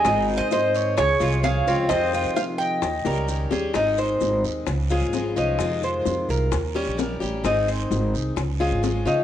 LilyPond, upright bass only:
\new Staff \with { instrumentName = "Upright bass" } { \clef bass \time 4/4 \key aes \major \tempo 4 = 130 aes,,8. aes,4~ aes,16 des,8 c,4 des,8 | f,8. f4~ f16 ees,8 des,4 ees,8 | aes,,4 aes,,8 ees,8 des,8. aes,,8. c,8 | f,4 f,8 c,8 ees,8. bes,,8. a,,8 |
aes,,4 aes,,8 c,8 des,8. aes,,8. des8 | }